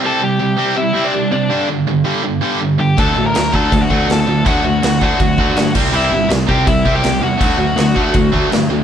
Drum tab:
CC |--------|--------|x-x-x-x-|x-x-x-xx|
SD |--------|--------|--o---o-|--o---o-|
BD |--------|--------|o--ooo--|o--ooo-o|

CC |x-x-x-x-|x-x-x-x-|
SD |--o---o-|--o---o-|
BD |---ooo--|o--ooo--|